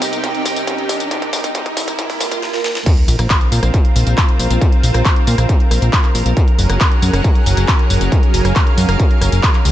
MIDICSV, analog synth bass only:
0, 0, Header, 1, 2, 480
1, 0, Start_track
1, 0, Key_signature, -5, "minor"
1, 0, Tempo, 437956
1, 1219, Time_signature, 4, 2, 24, 8
1, 10651, End_track
2, 0, Start_track
2, 0, Title_t, "Analog synth bass"
2, 0, Program_c, 0, 38
2, 3377, Note_on_c, 0, 34, 97
2, 3468, Note_off_c, 0, 34, 0
2, 3499, Note_on_c, 0, 34, 85
2, 3588, Note_off_c, 0, 34, 0
2, 3858, Note_on_c, 0, 46, 97
2, 3948, Note_off_c, 0, 46, 0
2, 3978, Note_on_c, 0, 34, 85
2, 4068, Note_off_c, 0, 34, 0
2, 4338, Note_on_c, 0, 34, 93
2, 4428, Note_off_c, 0, 34, 0
2, 4458, Note_on_c, 0, 34, 83
2, 4548, Note_off_c, 0, 34, 0
2, 4818, Note_on_c, 0, 34, 95
2, 4908, Note_off_c, 0, 34, 0
2, 4939, Note_on_c, 0, 34, 80
2, 5029, Note_off_c, 0, 34, 0
2, 5299, Note_on_c, 0, 34, 96
2, 5389, Note_off_c, 0, 34, 0
2, 5420, Note_on_c, 0, 34, 84
2, 5509, Note_off_c, 0, 34, 0
2, 5779, Note_on_c, 0, 46, 94
2, 5869, Note_off_c, 0, 46, 0
2, 5899, Note_on_c, 0, 34, 84
2, 5989, Note_off_c, 0, 34, 0
2, 6258, Note_on_c, 0, 34, 94
2, 6348, Note_off_c, 0, 34, 0
2, 6378, Note_on_c, 0, 34, 84
2, 6468, Note_off_c, 0, 34, 0
2, 6738, Note_on_c, 0, 34, 93
2, 6828, Note_off_c, 0, 34, 0
2, 6859, Note_on_c, 0, 34, 83
2, 6949, Note_off_c, 0, 34, 0
2, 7219, Note_on_c, 0, 30, 96
2, 7309, Note_off_c, 0, 30, 0
2, 7339, Note_on_c, 0, 30, 81
2, 7429, Note_off_c, 0, 30, 0
2, 7699, Note_on_c, 0, 42, 93
2, 7789, Note_off_c, 0, 42, 0
2, 7820, Note_on_c, 0, 30, 86
2, 7909, Note_off_c, 0, 30, 0
2, 8180, Note_on_c, 0, 30, 93
2, 8269, Note_off_c, 0, 30, 0
2, 8300, Note_on_c, 0, 30, 84
2, 8389, Note_off_c, 0, 30, 0
2, 8660, Note_on_c, 0, 30, 92
2, 8749, Note_off_c, 0, 30, 0
2, 8780, Note_on_c, 0, 30, 82
2, 8869, Note_off_c, 0, 30, 0
2, 9140, Note_on_c, 0, 30, 94
2, 9229, Note_off_c, 0, 30, 0
2, 9259, Note_on_c, 0, 30, 83
2, 9349, Note_off_c, 0, 30, 0
2, 9620, Note_on_c, 0, 42, 94
2, 9709, Note_off_c, 0, 42, 0
2, 9739, Note_on_c, 0, 30, 86
2, 9829, Note_off_c, 0, 30, 0
2, 10099, Note_on_c, 0, 30, 94
2, 10189, Note_off_c, 0, 30, 0
2, 10219, Note_on_c, 0, 30, 82
2, 10309, Note_off_c, 0, 30, 0
2, 10579, Note_on_c, 0, 37, 92
2, 10651, Note_off_c, 0, 37, 0
2, 10651, End_track
0, 0, End_of_file